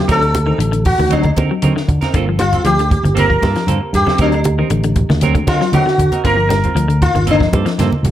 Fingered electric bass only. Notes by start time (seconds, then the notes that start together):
0.09 D2
0.59 A1
0.98 D2
1.37 D3
1.63 D3
1.88 D3
2.14 G1
2.65 D2
3.03 G1
3.42 G2
3.67 G2
3.93 G2
4.19 D2
4.70 A1
5.09 D2
5.47 D3
5.72 D3
5.98 D3
6.25 G1
6.75 D2
7.14 G1
7.53 G2
7.79 G2
8.03 C2